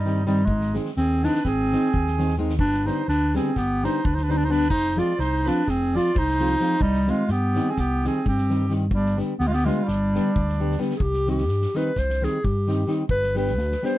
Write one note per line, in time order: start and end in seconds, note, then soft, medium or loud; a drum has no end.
0.00 0.49 G2 medium
0.00 0.25 G3 medium
0.00 0.26 D#4 medium
0.05 0.20 D#3 soft
0.05 0.21 G3 medium
0.05 0.21 C4 soft
0.05 0.21 D#4 medium
0.05 snare soft
0.26 0.41 D#3 medium
0.26 0.47 G3 medium
0.26 0.41 G3 medium
0.26 0.41 C4 medium
0.26 0.46 D#4 medium
0.26 0.41 D#4 medium
0.26 snare soft
0.46 0.77 G#1 medium
0.46 0.74 G#3 medium
0.46 0.75 D#4 medium
0.46 kick medium
0.61 snare soft
0.74 0.89 D#3 medium
0.74 0.90 G#3 medium
0.74 0.90 C4 medium
0.74 0.90 D#4 medium
0.74 snare soft
0.85 snare soft
0.96 1.26 D#2 medium
0.96 1.26 C4 medium
0.96 1.23 G#4 medium
0.96 snare soft
1.23 1.38 D#3 medium
1.23 1.38 G#3 medium
1.23 1.39 C4 soft
1.23 1.44 D4 loud
1.23 1.39 D#4 medium
1.23 snare soft
1.27 1.47 B4 medium
1.35 snare soft
1.45 1.74 G#1 medium
1.45 2.35 C4 medium
1.45 2.36 G#4 medium
1.45 kick medium
1.45 snare soft
1.72 1.87 D#3 medium
1.72 1.88 G#3 soft
1.72 1.88 C4 soft
1.72 1.88 D#4 medium
1.72 snare soft
1.94 2.61 D#2 medium
1.94 kick medium
2.07 snare soft
2.18 2.33 D#3 medium
2.18 2.33 G#3 medium
2.18 2.33 C4 medium
2.18 2.33 D#4 medium
2.18 snare soft
2.29 snare soft
2.38 2.52 D#3 medium
2.38 2.53 G#3 medium
2.38 2.53 C4 medium
2.38 2.53 D#4 medium
2.49 snare soft
2.59 2.89 G1 medium
2.59 2.88 D4 loud
2.59 2.85 B4 medium
2.59 kick loud
2.74 snare soft
2.85 3.01 D3 medium
2.85 3.01 G3 soft
2.85 3.01 B3 medium
2.85 3.02 D4 medium
2.85 3.08 D#4 medium
2.85 3.08 C5 medium
2.85 snare soft
3.08 3.37 D2 medium
3.08 3.38 D4 loud
3.08 3.33 B4 medium
3.08 snare soft
3.34 3.49 D3 medium
3.34 3.50 G3 medium
3.34 3.50 B3 soft
3.34 3.59 C4 medium
3.34 3.50 D4 medium
3.34 3.57 G#4 medium
3.34 snare soft
3.56 3.86 G1 medium
3.56 3.86 B3 medium
3.56 3.84 G4 medium
3.56 kick medium
3.56 snare soft
3.83 3.98 D3 medium
3.83 3.99 G3 medium
3.83 3.99 B3 soft
3.83 3.99 D4 medium
3.83 4.07 D#4 medium
3.83 4.05 C5 medium
3.83 snare soft
4.05 4.72 D2 medium
4.05 4.17 D4 medium
4.05 4.14 B4 medium
4.05 kick loud
4.13 4.25 D#4 medium
4.13 4.22 C5 medium
4.18 snare soft
4.23 4.33 D4 medium
4.23 4.31 B4 medium
4.28 4.43 D3 medium
4.28 4.43 G3 soft
4.28 4.44 B3 soft
4.28 4.44 D4 medium
4.28 4.39 D#4 medium
4.28 4.37 C5 medium
4.28 snare soft
4.36 4.46 D4 loud
4.36 4.44 B4 medium
4.44 4.53 D#4 medium
4.44 4.51 C5 medium
4.48 4.63 D3 medium
4.48 4.64 G3 medium
4.48 4.64 B3 medium
4.48 4.64 D4 medium
4.48 4.70 D4 loud
4.48 4.71 B4 medium
4.48 snare soft
4.70 5.00 F1 medium
4.70 5.00 D#4 loud
4.70 4.96 C5 loud
4.70 kick loud
4.84 snare soft
4.96 5.12 F3 medium
4.96 5.12 G#3 medium
4.96 5.12 C4 medium
4.96 5.13 F4 medium
4.96 5.22 F4 medium
4.96 5.19 D5 medium
4.96 snare soft
5.18 5.48 C2 medium
5.18 5.50 D#4 loud
5.18 5.46 C5 medium
5.18 snare soft
5.45 5.61 F3 medium
5.45 5.61 G#3 medium
5.45 5.62 C4 medium
5.45 5.71 D4 medium
5.45 5.62 F4 medium
5.45 5.67 B4 medium
5.45 snare soft
5.67 5.97 F1 medium
5.67 5.98 C4 medium
5.67 5.95 G#4 medium
5.67 kick medium
5.67 snare soft
5.94 6.09 F3 medium
5.94 6.10 G#3 soft
5.94 6.10 C4 soft
5.94 6.20 F4 medium
5.94 6.11 F4 medium
5.94 6.16 D5 medium
5.94 snare soft
6.15 6.54 C2 medium
6.15 6.84 D#4 loud
6.15 6.80 C5 medium
6.15 kick medium
6.28 snare soft
6.39 6.54 F3 medium
6.39 6.54 G#3 soft
6.39 6.54 C4 medium
6.39 6.55 F4 medium
6.39 snare soft
6.60 6.74 F3 medium
6.60 6.75 G#3 medium
6.60 6.75 C4 medium
6.60 6.75 F4 medium
6.60 snare soft
6.80 7.09 C2 medium
6.80 7.12 G3 loud
6.80 7.08 D#4 loud
6.80 kick medium
6.94 snare soft
7.07 7.22 D#3 medium
7.07 7.22 G3 soft
7.07 7.33 G#3 medium
7.07 7.23 C4 medium
7.07 7.23 D#4 medium
7.07 7.30 F4 medium
7.07 snare soft
7.28 7.58 G2 medium
7.28 7.72 B3 medium
7.28 7.68 G4 medium
7.28 snare soft
7.54 7.70 D#3 medium
7.54 7.70 G3 medium
7.54 7.71 C4 medium
7.54 7.71 D#4 medium
7.54 snare soft
7.69 7.81 C4 medium
7.69 7.78 G#4 medium
7.77 8.07 C2 medium
7.77 8.09 B3 medium
7.77 8.06 G4 medium
7.77 kick medium
7.77 snare soft
8.03 8.19 D#3 medium
8.03 8.19 G3 medium
8.03 8.19 C4 medium
8.03 8.20 D#4 medium
8.03 8.27 G#4 medium
8.03 snare soft
8.07 8.27 C4 medium
8.26 8.93 G2 medium
8.26 8.73 C4 medium
8.26 8.73 G4 medium
8.26 kick medium
8.38 snare soft
8.49 8.64 D#3 medium
8.49 8.64 G3 soft
8.49 8.64 C4 soft
8.49 8.65 D#4 soft
8.49 snare soft
8.69 8.84 D#3 medium
8.69 8.85 G3 medium
8.69 8.85 C4 medium
8.69 8.85 D#4 medium
8.69 snare soft
8.91 9.20 G1 medium
8.91 9.18 G3 medium
8.91 kick medium
8.95 9.19 D4 medium
9.06 snare soft
9.17 9.32 D3 medium
9.17 9.32 G3 soft
9.17 9.32 B3 medium
9.17 9.33 D4 medium
9.17 snare soft
9.39 9.69 D2 medium
9.39 9.49 B3 loud
9.39 9.46 G4 medium
9.39 snare soft
9.47 9.55 G#3 medium
9.47 9.54 F4 medium
9.53 9.67 B3 loud
9.53 9.67 G4 medium
9.53 snare soft
9.65 9.80 D3 medium
9.65 9.81 G3 medium
9.65 9.85 G#3 medium
9.65 9.81 B3 medium
9.65 9.81 D4 medium
9.65 9.87 F4 medium
9.65 snare soft
9.84 10.79 G3 medium
9.84 10.80 D4 medium
9.88 10.17 G1 medium
9.88 snare soft
10.14 10.29 D3 medium
10.14 10.30 G3 soft
10.14 10.30 B3 soft
10.14 10.30 D4 soft
10.14 snare soft
10.36 10.75 D2 medium
10.36 kick medium
10.49 snare soft
10.60 10.74 D3 soft
10.60 10.74 G3 medium
10.60 10.74 B3 medium
10.60 10.75 D4 medium
10.71 snare soft
10.78 10.93 D3 medium
10.78 10.94 G3 medium
10.78 10.94 B3 medium
10.78 10.94 D4 medium
10.78 snare soft
10.91 snare soft
10.96 11.04 G#4 medium
11.00 11.49 C2 medium
11.00 11.29 G4 medium
11.00 kick medium
11.13 snare soft
11.27 11.42 D#3 medium
11.27 11.42 G3 medium
11.27 11.43 C4 medium
11.27 11.43 D#4 medium
11.27 11.78 G4 medium
11.27 snare soft
11.38 snare soft
11.48 11.65 G2 medium
11.48 snare soft
11.62 snare soft
11.74 11.90 D#3 medium
11.74 11.90 G3 medium
11.74 11.90 C4 medium
11.74 11.91 D#4 medium
11.74 12.00 B4 medium
11.74 snare soft
11.96 12.25 C2 medium
11.96 12.26 C5 medium
11.96 kick soft
11.96 snare soft
12.09 snare soft
12.21 12.37 D#3 medium
12.21 12.38 G3 medium
12.21 12.38 C4 medium
12.21 12.38 D#4 medium
12.21 12.46 G#4 medium
12.21 snare soft
12.44 12.83 G2 medium
12.44 12.94 G4 medium
12.44 kick medium
12.67 12.82 D#3 medium
12.67 12.83 G3 medium
12.67 12.83 C4 soft
12.67 12.83 D#4 medium
12.67 snare soft
12.87 13.02 D#3 medium
12.87 13.03 G3 medium
12.87 13.03 C4 medium
12.87 13.03 D#4 medium
12.87 snare soft
13.09 13.58 G1 medium
13.09 13.35 B4 loud
13.09 kick medium
13.23 snare soft
13.35 13.50 G3 medium
13.35 13.50 B3 soft
13.35 13.51 D4 medium
13.35 13.51 G4 medium
13.35 13.87 B4 medium
13.35 snare soft
13.48 snare soft
13.58 13.74 D2 medium
13.58 snare soft
13.71 snare soft
13.82 13.98 G3 medium
13.82 13.98 B3 medium
13.82 13.98 D4 medium
13.82 13.98 G4 medium
13.82 13.98 C5 medium
13.82 snare soft